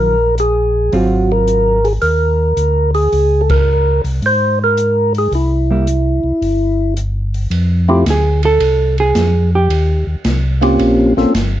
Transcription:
Already playing: tonewheel organ A#1 A#4, hollow-body jazz guitar D#3 F#3 C#4 F4
0.38 tonewheel organ G#4, closed hi-hat
0.92 tonewheel organ G#1 F#4, hollow-body jazz guitar F#3 C4 F4, open hi-hat
1.32 tonewheel organ A#4
1.47 closed hi-hat
1.85 tonewheel organ G#4, open hi-hat
2.02 tonewheel organ D#2 A#4, open hi-hat
2.57 tonewheel organ D2, closed hi-hat
2.94 tonewheel organ G#4, open hi-hat
3.12 tonewheel organ C#2, open hi-hat
3.41 tonewheel organ A4
3.50 tonewheel organ A#4, kick, ride
4.04 tonewheel organ C2, open hi-hat
4.22 tonewheel organ G#2, open hi-hat
4.26 tonewheel organ C5
4.64 tonewheel organ A#4
4.77 closed hi-hat
5.15 tonewheel organ G#4, open hi-hat
5.31 tonewheel organ C2 E4, open hi-hat
5.71 hollow-body jazz guitar G3 A#3 E4
5.87 closed hi-hat
6.24 tonewheel organ C2
6.42 tonewheel organ G1, open hi-hat
6.97 closed hi-hat
7.34 open hi-hat
7.50 tonewheel organ F2, ride
7.88 tonewheel organ A3 C4 E4 F4 G4
8.06 tonewheel organ D2, snare, hi-hat pedal, ride
8.10 hollow-body jazz guitar G#4
8.43 hollow-body jazz guitar A4, ride
8.60 tonewheel organ C2, ride
8.98 hollow-body jazz guitar G#4, ride
9.15 tonewheel organ F2, snare, hi-hat pedal, ride
9.55 hollow-body jazz guitar G4
9.69 tonewheel organ D#2, ride
10.07 tonewheel organ D#2
10.24 tonewheel organ C2, snare, hi-hat pedal, ride
10.61 tonewheel organ A#3 C4 C#4 F4 G4, ride
10.79 tonewheel organ A#1, ride
11.17 tonewheel organ A#1 A#3 C4 C#4 F4 A4, snare
11.34 tonewheel organ G1, snare, hi-hat pedal, ride

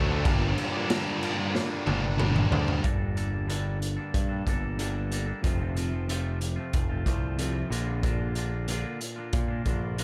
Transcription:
Already playing: picked electric bass D2, distorted electric guitar D3, string machine F#4 A4 D5 A5
0.07 distorted electric guitar F#3 A3 D4
0.23 picked electric bass G1, distorted electric guitar G2 D3 G3 A#3 D4, string machine F4 A#4 G5, kick, crash
0.58 crash
0.72 distorted electric guitar G3 A#3 D4
0.88 distorted electric guitar G2 D3 G3 A#3 D4, snare, crash
1.20 distorted electric guitar D3 G3 A#3 D4, crash
1.37 distorted electric guitar G3 A#3 D4, muted distorted electric guitar stroke
1.53 distorted electric guitar D3 G3 A#3 D4, snare
1.69 distorted electric guitar G3 A#3 D4
1.85 picked electric bass G1, distorted electric guitar D3 G3 A#3 D4, high tom
2.02 distorted electric guitar G3 A#3 D4, muted distorted electric guitar stroke
2.17 distorted electric guitar G2 D3 G3 A#3 D4, mid tom
2.36 mid tom
2.51 picked electric bass D2, distorted electric guitar D3 G3 A#3 D4, floor tom
2.66 distorted electric guitar G3 A#3 D4, floor tom
2.82 picked electric bass G1, clean electric guitar G2 D3 G3 A#3 D4 A4, kick, closed hi-hat
2.98 clean electric guitar G3 A#3 D4 A4
3.14 clean electric guitar G3 A#3 D4 A4, closed hi-hat
3.47 clean electric guitar G2 D3 G3 A#3 D4 A4, closed hi-hat
3.80 muted clean electric guitar stroke, closed hi-hat
3.97 clean electric guitar G3 A#3 D4 A4
4.14 picked electric bass G2, kick, closed hi-hat
4.29 clean electric guitar G3 A#3 D4 A4
4.45 picked electric bass G1, clean electric guitar G3 A#3 D4 A4, kick, closed hi-hat
4.77 clean electric guitar G2 D3 G3 A#3 D4 A4, closed hi-hat
4.94 clean electric guitar G3 A#3 D4 A4
5.11 clean electric guitar G3 A#3 D4 A4, closed hi-hat
5.26 clean electric guitar G3 A#3 D4 A4
5.42 picked electric bass F1, clean electric guitar F2 C3 F3 A3 C4 F4, kick, closed hi-hat
5.59 clean electric guitar A3 C4 F4
5.63 clean electric guitar F3
5.75 clean electric guitar F3 A3 C4 F4, closed hi-hat
6.08 clean electric guitar F2 C3 F3 A3 C4 F4, closed hi-hat
6.40 muted clean electric guitar stroke, closed hi-hat
6.56 clean electric guitar F3 A3 C4 F4
6.73 picked electric bass F1, kick, closed hi-hat
6.90 clean electric guitar F3 A3 C4 F4
7.05 picked electric bass C2, clean electric guitar F3 A3 C4 F4, kick, closed hi-hat
7.37 clean electric guitar F2 C3 F3 A3 C4 F4, closed hi-hat
7.54 clean electric guitar F3 A3 C4 F4
7.69 picked electric bass A#1, clean electric guitar A#2 D3 A#3 D4 F4, closed hi-hat
7.86 clean electric guitar A#3 D4 F4
8.03 clean electric guitar A#2 D3 A#3 D4 F4, kick, closed hi-hat
8.18 clean electric guitar A#3 D4 F4
8.35 clean electric guitar D3 A#3 D4 F4, closed hi-hat
8.67 clean electric guitar A#2 D3 A#3 D4 F4, closed hi-hat
9.01 muted clean electric guitar stroke, closed hi-hat
9.16 clean electric guitar A#3 D4 F4
9.33 picked electric bass A#2, kick, closed hi-hat
9.48 clean electric guitar A#3 D4 F4
9.65 picked electric bass A#1, clean electric guitar D3 A#3 D4 F4, kick, closed hi-hat
9.97 clean electric guitar A#2 D3 A#3 D4 F4, closed hi-hat

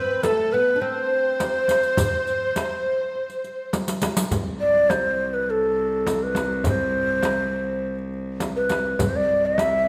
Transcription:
Already playing: oud C4, violin section B4, ney C5
0.23 oud A3, ney A4, violin section A4, riq, darbuka tek, frame drum
0.53 oud B3, ney B4, violin section B4
0.76 oud D4
0.81 oud C4, ney C5
0.85 violin section C5
1.40 riq, darbuka tek, frame drum
1.68 riq, darbuka tek, frame drum
1.83 riq, darbuka ka
1.97 riq, frame drum, darbuka dum
2.27 riq
2.56 riq, darbuka tek, frame drum
3.15 darbuka ka
3.30 riq, darbuka ka
3.44 riq, darbuka ka
3.73 riq, darbuka tek, frame drum
3.88 riq, darbuka ka
4.02 riq, darbuka tek, frame drum
4.17 riq, darbuka ka
4.30 cello C2, riq, darbuka dum, frame drum
4.60 ney D5
4.90 ney C5, riq, darbuka tek, frame drum
5.05 darbuka ka
5.34 ney B4
5.50 ney A4
5.63 darbuka ka
5.79 darbuka ka
6.07 riq, darbuka tek, frame drum
6.23 ney B4
6.35 riq, darbuka tek, frame drum
6.53 darbuka ka
6.64 ney C5, riq, frame drum, darbuka dum
7.23 riq, darbuka tek, frame drum
7.40 darbuka ka
7.99 darbuka ka
8.14 darbuka ka
8.40 riq, darbuka tek, frame drum
8.56 ney B4
8.69 riq, darbuka tek, frame drum
8.86 darbuka ka
8.99 cello C2, riq, frame drum, darbuka dum
9.09 ney C5
9.16 ney D5
9.46 ney E5
9.58 riq, darbuka tek, frame drum
9.74 darbuka ka

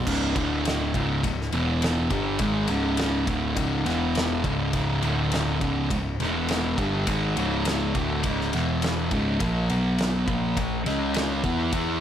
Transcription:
0.06 picked electric bass C#1, distorted electric guitar C#2 G#2 C#3, kick, crash
0.36 picked electric bass D1, distorted electric guitar D2 A2 D3, kick, ride
0.65 snare, ride
0.94 picked electric bass C#1, distorted electric guitar C#2 G#2 C#3, kick, ride
1.23 picked electric bass C#1, distorted electric guitar C#2 G#2, kick, ride
1.41 snare
1.52 picked electric bass E1, distorted electric guitar E2 B2 E3, ride
1.82 snare, ride
2.10 picked electric bass G1, distorted electric guitar G2 D3 G3, kick, ride
2.39 picked electric bass G#1, distorted electric guitar G#2 D#3 G#3, kick, ride
2.68 picked electric bass C#1, distorted electric guitar C#2 G#2 C#3, ride
2.97 snare, ride
3.27 picked electric bass D1, distorted electric guitar D2 A2 D3, kick, ride
3.56 picked electric bass C#1, distorted electric guitar C#2 G#2 C#3, kick, ride
3.86 picked electric bass E1, distorted electric guitar E2 B2 E3, snare, ride
4.15 snare, ride
4.44 picked electric bass C#1, distorted electric guitar C#2 G#2 C#3, kick, ride
4.73 picked electric bass C#1, distorted electric guitar C#2 G#2 C#3, kick, ride
5.02 picked electric bass D1, distorted electric guitar D2 A2 D3, ride
5.32 snare, ride
5.60 picked electric bass C#1, distorted electric guitar C#2 G#2 C#3, kick, ride
5.90 picked electric bass C#1, distorted electric guitar C#2 G#2, kick, ride
6.20 picked electric bass E1, distorted electric guitar E2 B2 E3, snare, ride
6.48 snare, ride
6.78 picked electric bass G1, distorted electric guitar G2 D3 G3, kick, ride
7.07 picked electric bass G#1, distorted electric guitar G#2 D#3 G#3, kick, ride
7.37 picked electric bass C#1, distorted electric guitar C#2 G#2 C#3, ride
7.65 snare, ride
7.95 picked electric bass D1, distorted electric guitar D2 A2 D3, kick, ride
8.23 picked electric bass C#1, distorted electric guitar C#2 G#2 C#3, kick, ride
8.41 snare
8.53 picked electric bass E1, distorted electric guitar E2 B2 E3, snare, ride
8.82 snare, ride
9.11 picked electric bass C#1, distorted electric guitar C#2 G#2 C#3, kick, ride
9.40 picked electric bass A#1, distorted electric guitar A#2 F3 A#3, kick, ride
9.70 picked electric bass B1, distorted electric guitar B2 F#3 B3, ride
9.98 snare, ride
10.27 picked electric bass A#1, distorted electric guitar A#2 F3 A#3, kick, ride
10.57 picked electric bass A#1, distorted electric guitar A#2 F3, kick, ride
10.86 picked electric bass C#2, distorted electric guitar C#3 G#3 C#4, snare, ride
11.14 snare, ride
11.43 picked electric bass E2, distorted electric guitar E3 B3 E4, kick, ride
11.73 picked electric bass E2, distorted electric guitar E3 B3 E4, kick, ride

